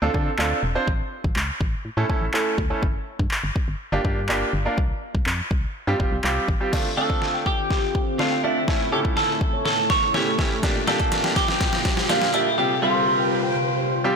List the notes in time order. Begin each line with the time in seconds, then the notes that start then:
0.02 D2 C4 D4 F4 A4
0.14 D3 C4 D4 F4 A4, kick
0.38 D2 C4 D4 F4 A4, clap
0.63 E1
0.75 C4 D4 F4 C5
0.88 A1, kick
1.24 A1, kick
1.36 C#2, clap
1.61 A1, kick
1.85 A2
1.97 A2 A3 C#4 E4 A4
2.09 A3 C#4 E4 A4, kick
2.22 A1
2.34 A3 C#4 E4 A4, clap
2.58 D2, kick
2.70 A3 C#4 E4 A4
2.83 G1, kick
3.19 G2, kick
3.31 clap
3.44 G1
3.56 kick
3.68 G1
3.92 G1 A#3 D4 F4 G4
4.04 G2 A#3 D4 F4 G4, kick
4.29 G1 A#3 D4 F4 G4, clap
4.53 G1
4.65 A#3 D4 F4 A#4
4.78 C2, kick
5.15 C2, kick
5.26 F2, clap
5.51 C2, kick
5.87 G2 G3 C4 F4 G4
6.00 G1 G3 C4 F4 G4, kick
6.12 C2
6.24 C2 G3 C4 F4 G4, clap
6.48 A1, kick
6.60 G3 C4 F4 G4
6.73 D3 A3 C4 D4 F4 A4, kick, snare, crash, riser
6.85 F4
6.97 A3 C4 D4 F4 A4
7.09 D5, kick
7.22 F4, snare
7.34 G5
7.46 G4, kick
7.58 G5
7.70 D3, kick, snare
7.83 F4
7.95 C4, kick
8.19 A3 C4 D4 F4, snare
8.31 G5
8.43 A3 C4 D4 E4 F4
8.68 A2 C#3 A3 C#4 E4 A4, kick, snare
8.80 A3
8.92 C#3 A3 C#4 E4 G4 A4
9.05 E4, kick
9.17 A3 A4, snare
9.29 A4
9.41 kick
9.53 C#5
9.65 A2 A4, snare
9.78 A3
9.90 C#3 C#5, kick, snare
10.14 A3 C#4 E4 G4 C#5, snare
10.26 A4
10.38 A3 C#4 E4 G4, kick, snare
10.63 A#2 D3 A#3 D4 F4 G4, kick, snare, closed hi-hat
10.75 F4
10.87 G3 A#3 D4 F4 G4 A4, snare, closed hi-hat
10.99 A#4, kick, closed hi-hat
11.12 F4, snare, closed hi-hat
11.24 G5, snare
11.36 G4, kick, snare, closed hi-hat
11.48 G5, snare
11.61 A#2, kick, snare, closed hi-hat
11.73 F4, snare
11.85 G3, kick, snare, closed hi-hat
11.97 snare
12.09 A#3 D4 F4 G4, snare, closed hi-hat
12.22 G5, snare
12.33 A#3 D4 E4 F4 G4, closed hi-hat
12.58 C3 G3 C4 F4 G4
12.70 F4
12.82 G3 C4 F4 G4
12.95 C5
13.07 F4
13.19 G5
13.44 G5
13.56 C3
13.68 F4
13.80 G3
14.04 G3 C4 F4 G4